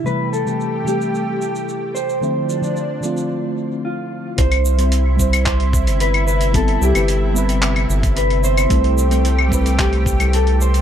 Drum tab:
HH |----------------|----------------|xx-xx--xxx-xxx-x|xx-xx--xxx-xxx-x|
SH |x-xxx-xxx-xxx-xx|x-xxx-xx--------|x-xxx-xxx-xxx-xx|x-xxx-xxx-xxx-xx|
CL |----------------|----------------|-x-----x-----x--|---x-----x-----x|
CP |----------------|----------------|--------x-------|--------x-------|
BD |----------------|----------------|o-----o-o-o-----|o----------o----|

HH |xx-xx--xxx-xxx-x|
SH |x-xxx-xxx-xxx-xx|
CL |-----x-----x----|
CP |--------x-------|
BD |o-----o-o-o-----|